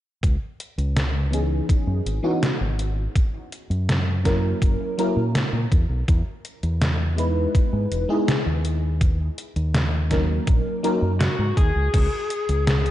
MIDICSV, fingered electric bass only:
0, 0, Header, 1, 3, 480
1, 0, Start_track
1, 0, Tempo, 731707
1, 152, Time_signature, 4, 2, 24, 8
1, 8468, End_track
2, 0, Start_track
2, 0, Title_t, "Fingered electric bass"
2, 0, Program_c, 0, 33
2, 150, Note_on_c, 0, 37, 91
2, 232, Note_off_c, 0, 37, 0
2, 510, Note_on_c, 0, 37, 71
2, 1048, Note_off_c, 0, 37, 0
2, 1228, Note_on_c, 0, 42, 73
2, 1311, Note_off_c, 0, 42, 0
2, 1349, Note_on_c, 0, 32, 74
2, 1431, Note_off_c, 0, 32, 0
2, 1710, Note_on_c, 0, 32, 76
2, 2008, Note_off_c, 0, 32, 0
2, 2427, Note_on_c, 0, 42, 74
2, 2967, Note_off_c, 0, 42, 0
2, 3029, Note_on_c, 0, 30, 86
2, 3111, Note_off_c, 0, 30, 0
2, 3388, Note_on_c, 0, 46, 80
2, 3552, Note_off_c, 0, 46, 0
2, 3626, Note_on_c, 0, 46, 82
2, 3710, Note_off_c, 0, 46, 0
2, 3749, Note_on_c, 0, 40, 86
2, 3832, Note_off_c, 0, 40, 0
2, 3866, Note_on_c, 0, 35, 75
2, 3950, Note_off_c, 0, 35, 0
2, 3989, Note_on_c, 0, 40, 93
2, 4072, Note_off_c, 0, 40, 0
2, 4350, Note_on_c, 0, 40, 72
2, 4888, Note_off_c, 0, 40, 0
2, 5070, Note_on_c, 0, 44, 74
2, 5152, Note_off_c, 0, 44, 0
2, 5190, Note_on_c, 0, 28, 79
2, 5272, Note_off_c, 0, 28, 0
2, 5551, Note_on_c, 0, 39, 75
2, 6089, Note_off_c, 0, 39, 0
2, 6271, Note_on_c, 0, 39, 73
2, 6809, Note_off_c, 0, 39, 0
2, 6870, Note_on_c, 0, 34, 89
2, 6952, Note_off_c, 0, 34, 0
2, 7229, Note_on_c, 0, 42, 83
2, 7392, Note_off_c, 0, 42, 0
2, 7470, Note_on_c, 0, 44, 86
2, 7552, Note_off_c, 0, 44, 0
2, 7591, Note_on_c, 0, 39, 91
2, 7673, Note_off_c, 0, 39, 0
2, 7711, Note_on_c, 0, 37, 76
2, 7792, Note_off_c, 0, 37, 0
2, 7830, Note_on_c, 0, 37, 95
2, 7912, Note_off_c, 0, 37, 0
2, 8193, Note_on_c, 0, 37, 74
2, 8468, Note_off_c, 0, 37, 0
2, 8468, End_track
3, 0, Start_track
3, 0, Title_t, "Muted fingered electric bass strokes"
3, 1110, Note_on_c, 9, 29, 39
3, 1176, Note_off_c, 9, 29, 0
3, 4950, Note_on_c, 9, 29, 41
3, 5016, Note_off_c, 9, 29, 0
3, 8468, End_track
0, 0, End_of_file